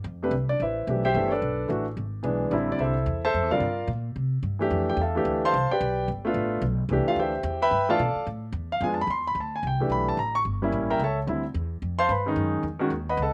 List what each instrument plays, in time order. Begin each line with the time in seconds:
0.04 upright bass F2
0.23 grand piano C3 A3 D4 G4 B4
0.31 upright bass C2
0.49 grand piano D4 D5
0.60 upright bass A1, grand piano E4 B4 C5 E5
0.87 upright bass B1, grand piano E3 A3 D4 G4
1.05 grand piano G4 C5 E5 G5
1.14 upright bass G1, grand piano E3 A3 D4 A4
1.28 grand piano C#5
1.32 grand piano D4 A4 B4 D5
1.42 upright bass B1
1.68 upright bass A1, grand piano E3 A3 D4 F#4
1.97 upright bass G#1
2.23 upright bass B1, grand piano E3 G#3 B3 D4
2.51 upright bass A1, grand piano D3 G3 C4 E4
2.71 grand piano D4 D5
2.79 upright bass C2, grand piano E4 A4 C5 E5
3.06 upright bass E2
3.25 grand piano A4 C5 E5 A5
3.34 upright bass F2
3.43 upright bass E2
3.51 upright bass C2, grand piano D3 G3 C4 D4 F4 A#4 D5 F5
3.60 upright bass G2
3.87 upright bass A#2
4.16 upright bass C3
4.43 upright bass G2
4.59 grand piano E3 A3 D4 G4
4.70 upright bass F2
4.90 grand piano G4 G5
4.97 upright bass E2
5.01 grand piano A4 E5 F5 A5
5.15 grand piano E3 A3 D4 G4
5.25 upright bass D2
5.45 grand piano C5 F5 A5 C6
5.54 upright bass C2
5.71 grand piano G4 B4 D5 G5, muted upright bass stroke
5.81 upright bass B1
6.08 upright bass G1
6.25 grand piano A3 B3 D4 F4
6.34 upright bass A1
6.62 upright bass B1
6.89 upright bass C2, grand piano E3 A3 D4
6.93 grand piano G4
7.06 grand piano F4 F5, muted upright bass stroke
7.16 upright bass D2, grand piano G4 G5
7.20 grand piano C5 E5
7.43 upright bass E2
7.62 grand piano B4 E5 G5 B5
7.71 upright bass G2
7.89 grand piano E3 A3 D4 F4 A4 D5 F5 A5
7.99 upright bass B2
8.15 muted upright bass stroke
8.27 upright bass A2
8.52 upright bass E2
8.72 grand piano F5
8.81 upright bass F2, grand piano G#3 B3 D4 F4 G#5
8.94 grand piano A5
9.01 grand piano B5
9.07 upright bass E2, grand piano C6
9.27 grand piano B5
9.35 upright bass D2
9.40 grand piano A5
9.56 grand piano G#5
9.63 upright bass C2
9.67 grand piano G5
9.80 grand piano E3 A3 D4 G4
9.89 upright bass B1, grand piano B5
10.09 grand piano A5
10.17 upright bass A1, grand piano A#5
10.35 grand piano C#6
10.45 upright bass G1
10.62 grand piano G3 A#3 C#4 E4
10.72 upright bass A1
10.90 grand piano A#4 E5 G5 A#5
10.99 upright bass C#2, grand piano A4 E5
11.04 grand piano C#5 A5
11.27 upright bass D2, grand piano D3 G3 C4 E4
11.54 upright bass E2
11.82 upright bass F2
11.99 grand piano C5 F5 A5 C6
12.09 upright bass G2, grand piano B4 B5
12.26 grand piano D#3 G#3 C#4 D#4
12.36 upright bass F#2
12.63 upright bass E2
12.79 grand piano D#3 G#3 C#4 F#4
12.90 upright bass D#2
13.09 grand piano B4 D#5 F#5 B5
13.17 upright bass C#2
13.22 grand piano A4 D#5 F#5 A5